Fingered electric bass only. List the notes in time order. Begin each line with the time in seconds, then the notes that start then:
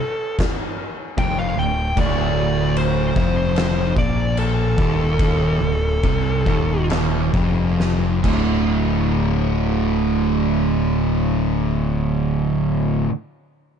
1.18 F1
1.57 D1
1.97 D1
3.16 F1
3.96 A#1
4.78 D#1
5.61 D1
6.03 C2
6.46 D#1
7.34 F1
8.24 D1